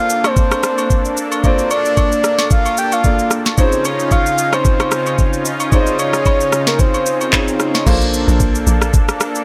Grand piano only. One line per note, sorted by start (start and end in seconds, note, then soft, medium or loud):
0.00 1.40 A#3 medium
0.00 1.40 D4 medium
0.00 1.40 F4 medium
0.00 1.40 A4 medium
0.00 1.41 C5 medium
1.44 3.01 A#3 medium
1.44 3.01 D4 medium
1.44 3.02 F4 medium
1.44 3.02 A4 medium
1.44 3.02 D5 medium
3.05 3.58 A#3 soft
3.05 3.58 D4 soft
3.05 3.57 F4 soft
3.05 3.59 A4 soft
3.05 3.59 D5 medium
3.58 5.68 C#4 medium
3.58 5.68 D#4 medium
3.58 5.69 F4 medium
3.58 5.69 G#4 medium
3.58 5.69 C5 medium
5.72 7.30 C#4 medium
5.72 7.30 D#4 medium
5.72 7.30 F4 medium
5.72 7.31 G#4 medium
5.72 5.80 D5 medium
5.81 7.34 D#5 medium
7.33 7.85 C#4 medium
7.33 7.87 D#4 soft
7.33 7.86 F4 soft
7.33 7.87 G#4 soft
7.33 7.87 C#5 medium
7.86 9.44 A#3 medium
7.86 7.94 C#4 medium
7.86 9.44 F4 medium
7.86 9.44 A4 medium
7.86 9.44 C5 medium
7.93 9.44 D4 medium